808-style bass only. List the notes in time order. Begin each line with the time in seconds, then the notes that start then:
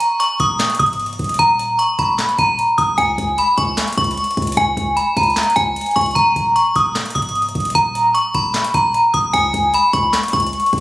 0.40 D#1
0.80 C#1
1.19 D#1
1.39 D#1
1.99 D#1
2.39 D#1
2.78 D#1
2.98 C#2
3.18 C#2
3.58 C#2
3.97 C#2
4.37 C#2
4.57 C#2
4.77 C#2
5.17 C#2
5.56 C#2
5.96 C#2
6.16 D#1
6.36 D#1
6.76 D#1
7.15 C#1
7.55 D#1
7.75 D#1
8.35 D#1
8.74 D#1
9.14 D#1
9.34 C#2
9.54 C#2
9.93 C#2
10.33 C#2
10.73 C#2